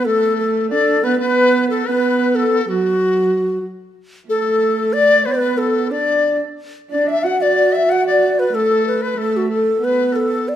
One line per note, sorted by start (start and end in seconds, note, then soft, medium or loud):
0.00 0.07 B4 medium
0.05 0.73 A3 medium
0.05 0.37 A4 medium
0.05 0.67 A4 medium
0.38 0.68 A4 medium
0.70 1.04 D4 medium
0.70 1.05 A4 medium
0.70 1.01 D5 medium
1.03 1.20 B3 medium
1.03 1.18 B4 medium
1.03 1.20 B4 medium
1.18 1.83 B3 medium
1.18 1.66 B4 medium
1.18 1.67 B4 medium
1.70 1.86 A4 medium
1.70 1.88 A4 medium
1.87 2.65 B3 medium
1.87 2.38 B4 medium
1.87 2.37 B4 medium
2.35 2.61 A4 medium
2.35 2.68 A4 medium
2.61 2.70 A4 soft
2.69 3.61 F#3 medium
2.69 3.65 F#4 medium
2.69 3.61 F#4 medium
4.28 5.28 A3 medium
4.28 4.94 A4 medium
4.28 4.95 A4 medium
4.93 5.27 D5 medium
4.93 5.25 D5 medium
5.26 5.91 B3 medium
5.26 5.34 B4 medium
5.26 5.59 B4 medium
5.32 5.41 D5 medium
5.39 5.60 B4 medium
5.58 5.93 A4 medium
5.58 5.91 A4 medium
5.90 6.40 D4 medium
5.90 6.37 D5 medium
5.90 6.40 D5 medium
6.90 7.25 D4 medium
6.90 7.09 D5 medium
6.90 7.10 D5 medium
7.08 7.25 E5 medium
7.08 7.28 E5 medium
7.24 7.88 F#4 medium
7.24 7.40 F#5 medium
7.24 7.45 F#5 medium
7.41 7.74 D5 medium
7.41 7.77 D5 medium
7.73 7.91 E5 medium
7.73 7.94 E5 medium
7.89 8.50 F#4 medium
7.89 8.06 F#5 medium
7.89 8.07 F#5 medium
8.07 8.34 D5 medium
8.07 8.41 D5 medium
8.34 8.55 B4 medium
8.34 8.40 D5 soft
8.40 8.56 B4 medium
8.53 9.14 A3 medium
8.53 9.04 A4 medium
8.53 8.86 A4 medium
8.87 9.02 B4 medium
9.02 9.19 B4 medium
9.02 9.18 B4 medium
9.18 9.78 A3 medium
9.18 9.49 A4 medium
9.18 9.38 A4 medium
9.37 9.52 F#4 medium
9.49 9.80 A4 medium
9.54 9.86 A4 medium
9.81 10.42 B3 medium
9.81 10.14 B4 medium
9.81 10.17 B4 medium
10.12 10.22 A4 medium
10.12 10.50 A4 medium
10.21 10.28 B4 soft
10.27 10.46 A4 medium
10.48 10.56 D5 medium